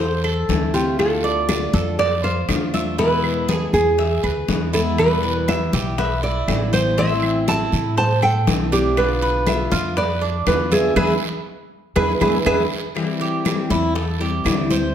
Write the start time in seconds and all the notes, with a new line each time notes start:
Already playing: E2 A4
0.00 C5, high bongo
0.24 A4, high bongo, high conga, claves
0.49 D2 E3 A3 C4 E4, high bongo, low bongo, high conga, short guiro
0.74 A3 C4 E4 F4 G4, high bongo, high conga, short guiro
0.98 D3 A3 D4 F4 A4, high bongo, high conga, long guiro, claves
1.24 D5, high bongo, high conga
1.48 D3 A3 D4 F4 D5, high bongo, high conga, short guiro, claves
1.73 F2 A4, high conga, short guiro
1.99 D5, muted steel-string acoustic guitar stroke, high bongo, high conga, long guiro
2.24 F4 C5, high bongo, high conga
2.48 E2 D3 A3 D4 F4, high bongo, low bongo, high conga, short guiro, claves
2.73 A3 D4 F4 E5, high bongo, high conga, short guiro
2.98 B2 E3 G#3 B3 E4 B4, high bongo, high conga, long guiro
3.24 high conga, claves
3.48 E3 G#3 B3 E4 G#4, high bongo, high conga, short guiro
3.56 A4
3.73 E2 G#4, high bongo, high conga, short guiro
3.98 E5, muted steel-string acoustic guitar stroke, high bongo, high conga, long guiro
4.23 D2 B4, high bongo, high conga, claves
4.48 E2 E3 G#3 B3 E4, high bongo, low bongo, high conga, short guiro
4.73 E3 G#3 B3 E4 A4, high bongo, short guiro
4.98 B2 E3 G3 B3 E4 B4, high bongo, high conga, long guiro, claves
5.23 B4, high bongo, high conga
5.48 E3 G3 B3 E4 E5, high bongo, high conga, short guiro, claves
5.73 B1 G4, high conga, short guiro
5.98 B4 E5, muted steel-string acoustic guitar stroke, high bongo, high conga, long guiro
6.23 E4 D5, high bongo, high conga
6.48 A1 E3 G3 B3 E4, high bongo, low bongo, high conga, short guiro, claves
6.73 E3 G3 B3 E4 C5, high bongo, high conga, short guiro
6.97 E3 A3 C4 E4 E5, high bongo, high conga, long guiro
7.23 high conga, claves
7.47 E3 A3 C4 E4 A5, high bongo, high conga, short guiro
7.72 A2, high bongo, high conga, short guiro
7.97 C5 A5, muted steel-string acoustic guitar stroke, high bongo, high conga, long guiro
8.22 A4 G5, high bongo, high conga, claves
8.47 B1 E3 A3 C4 E4, high bongo, low bongo, high conga, short guiro
8.72 A3 C4 D4 E4 G4, high bongo, high conga, short guiro
8.97 B2 D3 B3 D4 F4 B4, high bongo, high conga, long guiro, claves
9.22 B4, high bongo, high conga
9.47 D3 B3 D4 F4 E5, high bongo, high conga, short guiro, claves
9.72 F2 F4, high conga, short guiro
9.96 B4 D5, muted steel-string acoustic guitar stroke, high bongo, high conga, long guiro
10.21 D4, high bongo, high conga
10.46 E2 D3 B3 D4 F4 B4, high bongo, low bongo, high conga, short guiro, claves
10.71 D3 B3 D4 F4 G#4 E5, high bongo, high conga, short guiro
10.96 E2 G#3 B3 E4 G#4 B4 E5, low bongo, high conga, long guiro, claves
11.96 E2 G#3 B3 E4 G#4 B4 E5, low bongo, high conga, long guiro, claves
12.20 E2 G#3 B3 E4 G#4 B4 E5, low bongo, high conga, long guiro, claves
12.45 E2 G#3 B3 E4 G#4 B4 E5, low bongo, high conga, long guiro, claves
12.95 E3 G3 C4 E4, high bongo, high conga, long guiro, claves
13.21 G4, high bongo, high conga
13.45 E3 G3 C4 E4, high bongo, high conga, short guiro, claves
13.70 E2 E4, high conga, short guiro
13.95 A4, muted steel-string acoustic guitar stroke, high bongo, high conga, long guiro
14.19 G3 C4 E4 G4, high bongo, high conga
14.44 D2 E3 G3 C4 E4, high bongo, low bongo, high conga, short guiro, claves
14.69 G3 C4 E4 C5, high bongo, high conga, short guiro